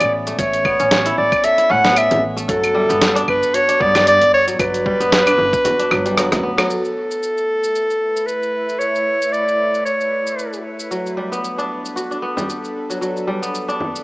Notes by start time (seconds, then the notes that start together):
Already playing: A3 B3 C#4 E4 A4 D5
0.01 A1, closed hi-hat, claves, shaker
0.27 A3, closed hi-hat, shaker
0.39 A1 A3 C#5, kick, closed hi-hat, shaker
0.54 closed hi-hat, shaker
0.65 B3, kick, claves
0.80 A1 C#4, closed hi-hat, shaker
0.91 snare, closed hi-hat, shaker
1.06 E4, closed hi-hat, shaker
1.18 A1 D5
1.32 kick, claves, shaker
1.44 A4 E5, closed hi-hat, shaker
1.58 E4, closed hi-hat, shaker
1.70 A2 C#4 F#5
1.84 B3, snare, shaker
1.96 E5, closed hi-hat, claves, shaker
2.11 A1, closed hi-hat, frame drum, shaker
2.37 A3, closed hi-hat, shaker
2.48 G1 F#3 A4, kick, closed hi-hat, shaker
2.64 closed hi-hat, claves, shaker
2.75 G3
2.89 G1 B3, closed hi-hat, shaker
3.02 snare, closed hi-hat, shaker
3.15 D4, closed hi-hat, shaker
3.28 G1 B4, kick, claves
3.43 shaker
3.54 F#4 C#5, closed hi-hat, shaker
3.69 D4, closed hi-hat, shaker
3.80 G2 B3 D5, kick
3.95 G3, snare, frame drum, claves, shaker
4.07 D5, closed hi-hat, shaker
4.21 G1, closed hi-hat, shaker
4.34 C#5
4.47 F#3, closed hi-hat, shaker
4.59 G1 F#3 B4, kick, closed hi-hat, claves, shaker
4.74 closed hi-hat, shaker
4.86 G3, kick
5.00 G1 B3, closed hi-hat, shaker
5.12 snare, closed hi-hat, shaker
5.26 D4, closed hi-hat, claves, shaker
5.38 G1, frame drum
5.53 kick, shaker
5.64 F#4, closed hi-hat, frame drum, shaker
5.79 D4, closed hi-hat, shaker
5.91 G1 F#3, cross-stick, claves
6.05 G3, closed hi-hat, shaker
6.17 F#3, cross-stick, closed hi-hat, shaker
6.32 D2, cross-stick, closed hi-hat, frame drum, shaker
6.43 B3
6.58 F#3, cross-stick, closed hi-hat, claves, shaker
6.70 A3 E4 A4 B4 E5, shaker
6.85 shaker
7.11 shaker
7.23 shaker
7.38 shaker
7.64 shaker
7.75 shaker
7.90 shaker
8.16 shaker
8.26 B4, shaker
8.43 shaker
8.69 shaker
8.79 C#5, shaker
8.95 shaker
9.22 shaker
9.32 D5, shaker
9.48 shaker
9.74 shaker
9.85 C#5, shaker
10.01 shaker
10.27 shaker
10.39 shaker
10.53 shaker
10.79 shaker
10.91 F#3 D4 A4, shaker
11.06 shaker
11.17 G3
11.32 B3, shaker
11.44 shaker
11.58 D4, shaker
11.85 shaker
11.96 F#4, shaker
12.11 D4, shaker
12.22 B3
12.37 G3, frame drum, shaker
12.50 shaker
12.64 shaker
12.90 F#3, shaker
13.01 F#3, shaker
13.17 shaker
13.27 G3
13.42 B3, shaker
13.55 shaker
13.68 D4, shaker
13.80 frame drum
13.96 shaker